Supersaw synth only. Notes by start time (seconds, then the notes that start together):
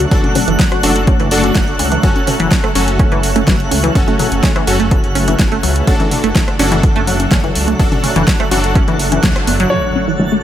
0.12 D4 F#4 A4
0.83 D4 F#4 A4
1.32 D4 F#4 A4
2.03 C#4 F#4 A4
2.75 C#4 F#4 A4
3.95 C#4 F#4 A4
4.67 C#4 F#4 A4
5.87 D4 F#4 A4
6.59 D4 F#4 A4
7.79 D4 F#4 A4
8.51 D4 F#4 A4